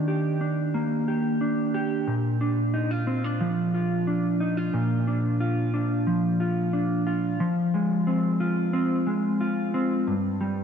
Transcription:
0, 0, Header, 1, 2, 480
1, 0, Start_track
1, 0, Tempo, 666667
1, 1493, Time_signature, 4, 2, 24, 8
1, 7659, End_track
2, 0, Start_track
2, 0, Title_t, "Clean electric guitar"
2, 0, Program_c, 0, 27
2, 0, Note_on_c, 0, 51, 77
2, 0, Note_on_c, 0, 58, 63
2, 0, Note_on_c, 0, 62, 51
2, 56, Note_on_c, 0, 67, 57
2, 291, Note_off_c, 0, 62, 0
2, 294, Note_on_c, 0, 62, 47
2, 532, Note_off_c, 0, 58, 0
2, 535, Note_on_c, 0, 58, 62
2, 769, Note_off_c, 0, 67, 0
2, 777, Note_on_c, 0, 67, 54
2, 1012, Note_off_c, 0, 62, 0
2, 1015, Note_on_c, 0, 62, 53
2, 1247, Note_off_c, 0, 67, 0
2, 1256, Note_on_c, 0, 67, 59
2, 1493, Note_off_c, 0, 51, 0
2, 1493, Note_on_c, 0, 46, 75
2, 1542, Note_off_c, 0, 67, 0
2, 1732, Note_off_c, 0, 62, 0
2, 1734, Note_on_c, 0, 62, 50
2, 1971, Note_on_c, 0, 63, 58
2, 2094, Note_off_c, 0, 63, 0
2, 2094, Note_on_c, 0, 65, 49
2, 2208, Note_off_c, 0, 62, 0
2, 2211, Note_on_c, 0, 60, 55
2, 2232, Note_off_c, 0, 58, 0
2, 2335, Note_off_c, 0, 60, 0
2, 2335, Note_on_c, 0, 62, 48
2, 2453, Note_on_c, 0, 53, 64
2, 2686, Note_off_c, 0, 65, 0
2, 2695, Note_on_c, 0, 65, 51
2, 2924, Note_off_c, 0, 62, 0
2, 2932, Note_on_c, 0, 62, 50
2, 3167, Note_off_c, 0, 65, 0
2, 3170, Note_on_c, 0, 63, 61
2, 3292, Note_off_c, 0, 63, 0
2, 3292, Note_on_c, 0, 65, 48
2, 3401, Note_off_c, 0, 46, 0
2, 3410, Note_on_c, 0, 46, 81
2, 3645, Note_off_c, 0, 62, 0
2, 3654, Note_on_c, 0, 62, 55
2, 3882, Note_off_c, 0, 65, 0
2, 3891, Note_on_c, 0, 65, 57
2, 4123, Note_off_c, 0, 62, 0
2, 4131, Note_on_c, 0, 62, 52
2, 4367, Note_off_c, 0, 53, 0
2, 4369, Note_on_c, 0, 53, 68
2, 4606, Note_off_c, 0, 65, 0
2, 4609, Note_on_c, 0, 65, 56
2, 4838, Note_off_c, 0, 62, 0
2, 4847, Note_on_c, 0, 62, 49
2, 5085, Note_off_c, 0, 65, 0
2, 5088, Note_on_c, 0, 65, 59
2, 5326, Note_off_c, 0, 53, 0
2, 5328, Note_on_c, 0, 53, 88
2, 5332, Note_off_c, 0, 46, 0
2, 5378, Note_off_c, 0, 62, 0
2, 5574, Note_on_c, 0, 56, 62
2, 5811, Note_on_c, 0, 60, 60
2, 6047, Note_off_c, 0, 65, 0
2, 6050, Note_on_c, 0, 65, 65
2, 6279, Note_off_c, 0, 60, 0
2, 6288, Note_on_c, 0, 60, 70
2, 6518, Note_off_c, 0, 56, 0
2, 6527, Note_on_c, 0, 56, 55
2, 6763, Note_off_c, 0, 65, 0
2, 6772, Note_on_c, 0, 65, 61
2, 7005, Note_off_c, 0, 60, 0
2, 7014, Note_on_c, 0, 60, 63
2, 7251, Note_off_c, 0, 53, 0
2, 7253, Note_on_c, 0, 43, 86
2, 7298, Note_off_c, 0, 56, 0
2, 7301, Note_off_c, 0, 60, 0
2, 7301, Note_off_c, 0, 65, 0
2, 7493, Note_on_c, 0, 55, 62
2, 7659, Note_off_c, 0, 43, 0
2, 7659, Note_off_c, 0, 55, 0
2, 7659, End_track
0, 0, End_of_file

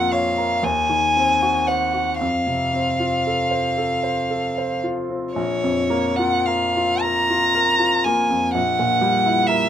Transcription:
0, 0, Header, 1, 3, 480
1, 0, Start_track
1, 0, Key_signature, -5, "minor"
1, 0, Tempo, 1016949
1, 540, Tempo, 1056338
1, 1021, Time_signature, 6, 3, 24, 8
1, 2460, Tempo, 1090909
1, 3420, Tempo, 998336
1, 3900, Tempo, 930233
1, 4489, End_track
2, 0, Start_track
2, 0, Title_t, "Violin"
2, 0, Program_c, 0, 40
2, 0, Note_on_c, 0, 78, 60
2, 56, Note_on_c, 0, 77, 53
2, 63, Note_off_c, 0, 78, 0
2, 300, Note_on_c, 0, 80, 69
2, 307, Note_off_c, 0, 77, 0
2, 778, Note_on_c, 0, 78, 50
2, 785, Note_off_c, 0, 80, 0
2, 1012, Note_off_c, 0, 78, 0
2, 1015, Note_on_c, 0, 77, 54
2, 2201, Note_off_c, 0, 77, 0
2, 2449, Note_on_c, 0, 73, 55
2, 2808, Note_on_c, 0, 78, 57
2, 2815, Note_off_c, 0, 73, 0
2, 2938, Note_on_c, 0, 77, 52
2, 2945, Note_off_c, 0, 78, 0
2, 3180, Note_on_c, 0, 82, 65
2, 3186, Note_off_c, 0, 77, 0
2, 3654, Note_on_c, 0, 80, 59
2, 3661, Note_off_c, 0, 82, 0
2, 3891, Note_off_c, 0, 80, 0
2, 3893, Note_on_c, 0, 78, 63
2, 4372, Note_on_c, 0, 76, 62
2, 4380, Note_off_c, 0, 78, 0
2, 4489, Note_off_c, 0, 76, 0
2, 4489, End_track
3, 0, Start_track
3, 0, Title_t, "Grand piano"
3, 0, Program_c, 1, 0
3, 0, Control_c, 1, 64, 127
3, 0, Note_on_c, 1, 34, 44
3, 0, Note_on_c, 1, 41, 33
3, 0, Note_on_c, 1, 58, 35
3, 0, Note_on_c, 1, 65, 30
3, 58, Note_on_c, 1, 73, 35
3, 132, Note_off_c, 1, 65, 0
3, 179, Note_on_c, 1, 70, 28
3, 250, Note_off_c, 1, 73, 0
3, 279, Note_off_c, 1, 34, 0
3, 296, Note_on_c, 1, 39, 40
3, 298, Note_off_c, 1, 70, 0
3, 305, Control_c, 1, 64, 0
3, 307, Note_off_c, 1, 41, 0
3, 309, Note_off_c, 1, 58, 0
3, 382, Control_c, 1, 64, 127
3, 422, Note_on_c, 1, 51, 32
3, 549, Note_on_c, 1, 60, 29
3, 613, Note_off_c, 1, 51, 0
3, 666, Note_on_c, 1, 66, 30
3, 735, Note_off_c, 1, 60, 0
3, 784, Note_on_c, 1, 72, 28
3, 855, Note_off_c, 1, 66, 0
3, 899, Note_on_c, 1, 66, 28
3, 975, Note_off_c, 1, 72, 0
3, 1002, Note_off_c, 1, 39, 0
3, 1020, Note_off_c, 1, 66, 0
3, 1023, Note_on_c, 1, 41, 36
3, 1029, Control_c, 1, 64, 0
3, 1114, Control_c, 1, 64, 127
3, 1142, Note_on_c, 1, 48, 29
3, 1264, Note_on_c, 1, 60, 30
3, 1333, Note_off_c, 1, 48, 0
3, 1381, Note_on_c, 1, 65, 27
3, 1453, Note_off_c, 1, 60, 0
3, 1505, Note_on_c, 1, 69, 28
3, 1572, Note_off_c, 1, 65, 0
3, 1616, Note_on_c, 1, 72, 28
3, 1694, Note_off_c, 1, 69, 0
3, 1736, Note_on_c, 1, 69, 29
3, 1810, Note_off_c, 1, 72, 0
3, 1853, Note_on_c, 1, 72, 28
3, 1930, Note_off_c, 1, 69, 0
3, 1976, Note_on_c, 1, 69, 30
3, 2050, Note_off_c, 1, 72, 0
3, 2101, Note_on_c, 1, 72, 29
3, 2171, Note_off_c, 1, 69, 0
3, 2217, Note_on_c, 1, 65, 27
3, 2294, Note_off_c, 1, 72, 0
3, 2337, Note_on_c, 1, 60, 25
3, 2411, Note_off_c, 1, 65, 0
3, 2443, Note_off_c, 1, 41, 0
3, 2454, Note_on_c, 1, 34, 41
3, 2457, Note_off_c, 1, 60, 0
3, 2467, Control_c, 1, 64, 0
3, 2532, Control_c, 1, 64, 127
3, 2576, Note_on_c, 1, 41, 32
3, 2693, Note_on_c, 1, 58, 37
3, 2771, Note_off_c, 1, 41, 0
3, 2821, Note_on_c, 1, 65, 35
3, 2895, Note_off_c, 1, 58, 0
3, 2946, Note_on_c, 1, 70, 35
3, 3024, Note_off_c, 1, 65, 0
3, 3075, Note_on_c, 1, 65, 34
3, 3145, Note_off_c, 1, 70, 0
3, 3195, Note_on_c, 1, 70, 32
3, 3263, Note_off_c, 1, 65, 0
3, 3311, Note_on_c, 1, 65, 39
3, 3377, Note_off_c, 1, 70, 0
3, 3418, Note_on_c, 1, 70, 37
3, 3495, Note_off_c, 1, 65, 0
3, 3536, Note_on_c, 1, 65, 37
3, 3613, Note_off_c, 1, 70, 0
3, 3664, Note_on_c, 1, 58, 33
3, 3732, Note_off_c, 1, 65, 0
3, 3780, Note_on_c, 1, 41, 32
3, 3855, Note_off_c, 1, 58, 0
3, 3879, Note_off_c, 1, 34, 0
3, 3897, Note_on_c, 1, 34, 42
3, 3900, Note_off_c, 1, 41, 0
3, 3910, Control_c, 1, 64, 0
3, 3996, Control_c, 1, 64, 127
3, 4026, Note_on_c, 1, 46, 35
3, 4139, Note_on_c, 1, 55, 42
3, 4219, Note_off_c, 1, 46, 0
3, 4267, Note_on_c, 1, 64, 35
3, 4333, Note_off_c, 1, 55, 0
3, 4383, Note_on_c, 1, 70, 41
3, 4455, Note_off_c, 1, 64, 0
3, 4489, Note_off_c, 1, 34, 0
3, 4489, Note_off_c, 1, 70, 0
3, 4489, End_track
0, 0, End_of_file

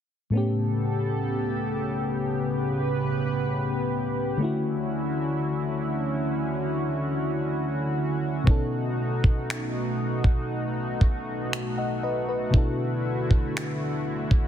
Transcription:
0, 0, Header, 1, 4, 480
1, 0, Start_track
1, 0, Tempo, 1016949
1, 159, Time_signature, 4, 2, 24, 8
1, 6834, End_track
2, 0, Start_track
2, 0, Title_t, "FM electric piano"
2, 0, Program_c, 0, 5
2, 142, Note_on_c, 0, 45, 64
2, 151, Note_on_c, 0, 57, 61
2, 159, Note_on_c, 0, 59, 59
2, 167, Note_on_c, 0, 61, 60
2, 176, Note_on_c, 0, 67, 73
2, 241, Control_c, 0, 64, 127
2, 2052, Note_off_c, 0, 45, 0
2, 2056, Note_off_c, 0, 57, 0
2, 2060, Note_off_c, 0, 59, 0
2, 2063, Note_on_c, 0, 50, 67
2, 2064, Note_off_c, 0, 61, 0
2, 2069, Note_off_c, 0, 67, 0
2, 2072, Note_on_c, 0, 57, 62
2, 2080, Note_on_c, 0, 61, 63
2, 2085, Control_c, 0, 64, 0
2, 2088, Note_on_c, 0, 64, 62
2, 2096, Note_on_c, 0, 66, 72
2, 2169, Control_c, 0, 64, 127
2, 3972, Note_off_c, 0, 50, 0
2, 3976, Note_off_c, 0, 57, 0
2, 3981, Note_off_c, 0, 61, 0
2, 3983, Note_on_c, 0, 47, 66
2, 3985, Note_off_c, 0, 64, 0
2, 3989, Note_off_c, 0, 66, 0
2, 3991, Note_on_c, 0, 59, 63
2, 3999, Note_on_c, 0, 61, 60
2, 4006, Control_c, 0, 64, 0
2, 4008, Note_on_c, 0, 63, 61
2, 4016, Note_on_c, 0, 69, 77
2, 4078, Control_c, 0, 64, 127
2, 5559, Note_on_c, 0, 78, 56
2, 5562, Note_on_c, 0, 75, 50
2, 5673, Note_off_c, 0, 78, 0
2, 5674, Note_off_c, 0, 75, 0
2, 5680, Note_on_c, 0, 75, 67
2, 5682, Note_on_c, 0, 71, 60
2, 5793, Note_off_c, 0, 75, 0
2, 5794, Note_off_c, 0, 71, 0
2, 5799, Note_on_c, 0, 71, 64
2, 5892, Note_off_c, 0, 47, 0
2, 5896, Note_off_c, 0, 59, 0
2, 5900, Note_off_c, 0, 61, 0
2, 5903, Note_on_c, 0, 47, 70
2, 5904, Note_off_c, 0, 63, 0
2, 5908, Note_off_c, 0, 69, 0
2, 5909, Note_on_c, 0, 59, 64
2, 5916, Note_on_c, 0, 62, 62
2, 5922, Note_on_c, 0, 64, 63
2, 5925, Control_c, 0, 64, 0
2, 5929, Note_on_c, 0, 66, 63
2, 5936, Note_on_c, 0, 69, 72
2, 6022, Control_c, 0, 64, 127
2, 6027, Note_off_c, 0, 71, 0
2, 6834, Note_off_c, 0, 47, 0
2, 6834, Note_off_c, 0, 59, 0
2, 6834, Note_off_c, 0, 62, 0
2, 6834, Note_off_c, 0, 64, 0
2, 6834, Note_off_c, 0, 66, 0
2, 6834, Note_off_c, 0, 69, 0
2, 6834, End_track
3, 0, Start_track
3, 0, Title_t, "Analog synth pad"
3, 0, Program_c, 1, 89
3, 158, Note_on_c, 1, 67, 72
3, 158, Note_on_c, 1, 69, 91
3, 159, Note_on_c, 1, 49, 80
3, 159, Note_on_c, 1, 59, 73
3, 1109, Note_off_c, 1, 69, 0
3, 1118, Note_on_c, 1, 71, 81
3, 2060, Note_off_c, 1, 49, 0
3, 2060, Note_off_c, 1, 59, 0
3, 2060, Note_off_c, 1, 67, 0
3, 2069, Note_off_c, 1, 71, 0
3, 2079, Note_on_c, 1, 50, 76
3, 2079, Note_on_c, 1, 61, 71
3, 2079, Note_on_c, 1, 64, 69
3, 2079, Note_on_c, 1, 66, 87
3, 3980, Note_off_c, 1, 50, 0
3, 3980, Note_off_c, 1, 61, 0
3, 3980, Note_off_c, 1, 64, 0
3, 3999, Note_on_c, 1, 47, 76
3, 3999, Note_on_c, 1, 63, 73
3, 4000, Note_on_c, 1, 57, 70
3, 5900, Note_off_c, 1, 47, 0
3, 5900, Note_off_c, 1, 63, 0
3, 5919, Note_on_c, 1, 50, 83
3, 5919, Note_on_c, 1, 64, 69
3, 6834, Note_off_c, 1, 50, 0
3, 6834, Note_off_c, 1, 57, 0
3, 6834, Note_off_c, 1, 64, 0
3, 6834, Note_off_c, 1, 66, 0
3, 6834, End_track
4, 0, Start_track
4, 0, Title_t, "Drums"
4, 3999, Note_on_c, 9, 36, 103
4, 4046, Note_off_c, 9, 36, 0
4, 4361, Note_on_c, 9, 36, 78
4, 4409, Note_off_c, 9, 36, 0
4, 4485, Note_on_c, 9, 26, 97
4, 4532, Note_off_c, 9, 26, 0
4, 4835, Note_on_c, 9, 36, 88
4, 4882, Note_off_c, 9, 36, 0
4, 5198, Note_on_c, 9, 36, 84
4, 5245, Note_off_c, 9, 36, 0
4, 5443, Note_on_c, 9, 26, 107
4, 5490, Note_off_c, 9, 26, 0
4, 5918, Note_on_c, 9, 36, 108
4, 5965, Note_off_c, 9, 36, 0
4, 6281, Note_on_c, 9, 36, 82
4, 6328, Note_off_c, 9, 36, 0
4, 6404, Note_on_c, 9, 26, 102
4, 6452, Note_off_c, 9, 26, 0
4, 6754, Note_on_c, 9, 36, 89
4, 6802, Note_off_c, 9, 36, 0
4, 6834, End_track
0, 0, End_of_file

